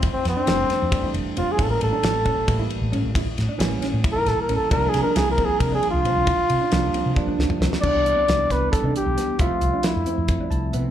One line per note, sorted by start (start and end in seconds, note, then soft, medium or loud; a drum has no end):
0.00 0.16 E3 medium
0.00 0.16 G3 medium
0.00 0.16 A3 medium
0.00 0.16 C4 medium
0.00 0.20 E4 medium
0.00 kick loud
0.00 ride medium
0.13 0.27 C4 medium
0.13 muted fretless electric bass stroke soft
0.25 0.34 F2 medium
0.25 1.14 C4 loud
0.25 snare soft
0.25 ride medium
0.36 0.53 D4 medium
0.46 0.65 F1 medium
0.46 0.86 E3 medium
0.46 0.87 G3 medium
0.46 0.87 A3 medium
0.46 0.87 D4 medium
0.46 snare loud
0.46 ride medium
0.70 0.87 C4 medium
0.70 muted fretless electric bass stroke soft
0.70 snare soft
0.70 ride medium
0.82 0.91 F2 medium
0.91 1.56 E3 medium
0.91 1.56 G3 medium
0.91 1.59 A3 medium
0.91 1.60 D4 medium
0.91 kick loud
0.91 ride loud
1.03 1.20 E4 medium
1.03 muted fretless electric bass stroke soft
1.14 1.23 F1 medium
1.14 ride medium
1.26 muted fretless electric bass stroke soft
1.37 1.46 F1 medium
1.37 1.54 C4 medium
1.37 1.53 F4 loud
1.37 ride medium
1.48 muted fretless electric bass stroke soft
1.52 1.64 G#4 medium
1.57 1.77 A1 loud
1.57 1.98 E3 medium
1.57 1.98 G3 medium
1.57 1.98 A#3 medium
1.57 1.98 C#4 medium
1.57 1.76 E4 medium
1.57 kick loud
1.57 ride medium
1.62 1.70 A4 medium
1.70 1.81 A#4 medium
1.81 1.90 A2 medium
1.81 2.69 A4 medium
1.81 ride medium
1.92 2.09 D4 medium
1.92 muted fretless electric bass stroke soft
2.02 2.29 A1 medium
2.02 2.43 E3 medium
2.02 2.43 G3 medium
2.02 2.43 A#3 medium
2.02 2.43 C#4 medium
2.02 snare loud
2.02 ride medium
2.25 2.42 C#4 medium
2.25 kick medium
2.25 ride medium
2.37 muted fretless electric bass stroke soft
2.46 2.66 A2 medium
2.46 3.27 E3 medium
2.46 3.27 G3 medium
2.46 3.27 A#3 medium
2.46 3.28 E4 medium
2.46 kick loud
2.46 ride medium
2.59 2.76 E4 medium
2.70 ride medium
2.81 2.94 A1 medium
2.92 3.02 A2 medium
2.92 3.09 C#4 medium
2.92 ride medium
3.05 3.22 A1 medium
3.15 3.32 E4 loud
3.15 kick loud
3.15 ride medium
3.27 muted fretless electric bass stroke soft
3.38 3.47 A2 loud
3.38 snare soft
3.38 ride medium
3.49 3.65 D4 medium
3.58 3.77 A1 loud
3.58 3.99 E3 medium
3.58 3.99 G3 medium
3.58 3.99 A#3 medium
3.58 3.99 C#4 loud
3.58 snare loud
3.58 ride medium
3.82 3.99 C#4 medium
3.82 muted fretless electric bass stroke soft
3.82 snare soft
3.82 ride medium
3.93 4.02 A2 medium
4.02 4.70 E3 medium
4.02 4.70 G3 medium
4.02 4.70 A#3 medium
4.02 4.71 E4 medium
4.02 kick loud
4.02 ride medium
4.12 4.30 A#4 loud
4.12 muted fretless electric bass stroke soft
4.16 4.33 E4 medium
4.26 4.35 A1 medium
4.26 4.41 A4 loud
4.26 snare soft
4.26 ride medium
4.38 4.56 A#4 medium
4.38 muted fretless electric bass stroke soft
4.49 4.58 A1 medium
4.49 4.66 C#4 medium
4.49 ride medium
4.56 4.71 A4 medium
4.61 muted fretless electric bass stroke soft
4.70 4.88 C2 loud
4.70 5.10 F3 medium
4.70 5.11 G3 medium
4.70 5.11 A#3 medium
4.70 5.11 D4 loud
4.70 4.88 E4 medium
4.70 4.90 A#4 loud
4.70 kick loud
4.70 ride medium
4.89 5.02 G#4 loud
4.94 5.03 C3 loud
4.94 snare soft
4.94 ride medium
5.02 5.21 D4 medium
5.02 5.17 A#4 loud
5.02 muted fretless electric bass stroke soft
5.16 5.42 C2 loud
5.16 5.55 F3 medium
5.16 5.55 G3 medium
5.16 5.56 A#3 medium
5.16 5.56 E4 medium
5.16 5.30 G#4 loud
5.16 snare loud
5.16 ride loud
5.31 5.47 A#4 medium
5.38 5.55 C4 medium
5.38 kick medium
5.38 ride medium
5.45 5.61 G#4 loud
5.50 muted fretless electric bass stroke soft
5.60 5.78 C3 medium
5.60 6.39 F3 medium
5.60 6.40 G3 medium
5.60 6.40 A#3 medium
5.60 6.40 D4 medium
5.60 5.74 A#4 medium
5.60 kick loud
5.60 ride medium
5.72 5.89 D4 medium
5.72 5.89 G#4 medium
5.83 ride medium
5.91 6.06 C2 medium
5.91 7.20 F4 loud
6.04 6.13 C3 loud
6.04 6.22 C4 medium
6.04 ride medium
6.16 6.33 C2 loud
6.27 6.44 E4 loud
6.27 kick loud
6.27 ride medium
6.39 muted fretless electric bass stroke soft
6.50 6.58 C3 loud
6.50 ride medium
6.61 6.77 D4 medium
6.71 6.89 C2 medium
6.71 7.11 F3 medium
6.71 7.11 G3 medium
6.71 7.11 A#3 medium
6.71 7.12 D4 medium
6.71 snare loud
6.71 ride medium
6.94 7.11 C4 medium
6.94 muted fretless electric bass stroke soft
6.94 ride medium
7.06 7.14 C3 medium
7.14 7.82 F3 medium
7.14 7.81 G3 medium
7.14 7.83 A#3 medium
7.14 7.82 D4 medium
7.14 kick loud
7.27 7.44 D4 medium
7.27 muted fretless electric bass stroke soft
7.39 7.47 C2 medium
7.39 snare medium
7.50 mid tom medium
7.60 7.69 C2 medium
7.60 7.78 C4 medium
7.60 snare loud
7.73 snare loud
7.82 7.92 C2 loud
7.82 8.23 E3 medium
7.82 8.22 G3 medium
7.82 8.23 B3 medium
7.82 8.00 D4 medium
7.82 8.23 D4 medium
7.82 8.53 D5 loud
7.82 kick loud
7.82 crash medium
7.94 8.11 C2 medium
8.06 closed hi-hat medium
8.16 8.33 C4 medium
8.27 8.45 C2 medium
8.27 8.67 E3 medium
8.27 8.67 G3 soft
8.27 8.67 B3 medium
8.27 8.67 D4 medium
8.27 snare loud
8.27 closed hi-hat medium
8.50 8.67 C2 medium
8.50 8.67 B3 medium
8.50 8.71 B4 loud
8.50 kick medium
8.50 snare soft
8.50 closed hi-hat medium
8.70 9.38 E3 medium
8.70 9.39 G3 medium
8.70 9.39 B3 soft
8.70 9.39 D4 medium
8.70 8.93 A4 medium
8.70 kick loud
8.70 closed hi-hat medium
8.74 snare soft
8.83 8.92 C3 loud
8.83 9.01 D4 medium
8.95 9.41 G4 medium
8.95 muted fretless electric bass stroke soft
8.95 closed hi-hat medium
9.06 9.15 B1 medium
9.18 9.34 B3 medium
9.18 snare soft
9.18 closed hi-hat medium
9.29 muted fretless electric bass stroke soft
9.39 9.48 C2 loud
9.39 9.79 F3 medium
9.39 9.79 A3 medium
9.39 9.79 C4 medium
9.39 9.57 E4 medium
9.39 9.87 F4 medium
9.39 9.80 E5 medium
9.39 kick loud
9.39 closed hi-hat medium
9.61 9.70 C2 medium
9.61 closed hi-hat medium
9.73 9.90 D4 medium
9.83 10.24 F3 medium
9.83 10.24 A3 medium
9.83 10.24 C4 medium
9.83 10.24 E4 medium
9.83 10.74 E4 medium
9.83 muted fretless electric bass stroke soft
9.83 snare loud
9.83 closed hi-hat medium
9.96 10.04 F2 medium
10.06 10.23 C4 medium
10.06 closed hi-hat medium
10.18 10.35 F2 medium
10.28 10.91 F3 medium
10.28 10.91 A3 medium
10.28 10.91 C4 soft
10.28 10.91 E4 medium
10.28 kick loud
10.28 closed hi-hat medium
10.39 10.57 D4 medium
10.39 muted fretless electric bass stroke soft
10.51 10.74 C2 medium
10.51 10.72 A5 medium
10.51 closed hi-hat soft
10.73 10.90 C3 medium
10.73 10.90 B3 medium
10.73 10.91 E5 medium
10.73 closed hi-hat medium